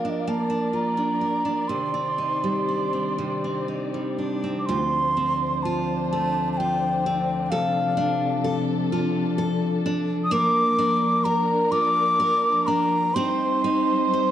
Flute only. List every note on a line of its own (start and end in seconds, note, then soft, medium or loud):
0.00 0.11 F5 medium
0.10 0.21 D#5 medium
0.20 0.30 F5 medium
0.28 0.77 A5 medium
0.75 1.69 A#5 medium
1.68 3.67 C6 medium
4.59 4.67 D6 soft
4.66 5.64 C6 medium
5.63 6.10 A5 medium
6.11 6.49 A5 medium
6.52 6.59 A5 medium
6.57 7.46 G5 medium
7.46 7.52 G5 medium
7.50 8.56 F5 medium
10.24 10.34 D#6 medium
10.32 11.26 D6 loud
11.24 11.73 A#5 loud
11.72 12.68 D6 loud
12.67 13.16 A#5 loud
13.14 14.31 C6 loud